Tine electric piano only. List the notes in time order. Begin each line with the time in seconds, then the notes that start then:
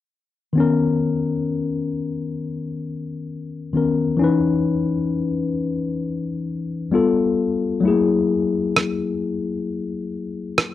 0.53 D#3 B3
0.58 C#4 A#4
3.73 D#3 B3 C#4 A#4
4.17 E3 C#4
4.22 D#4 B4
6.92 G3 B3 F4 A4
7.80 F#3 A3
7.85 E4 G#4
7.89 A#3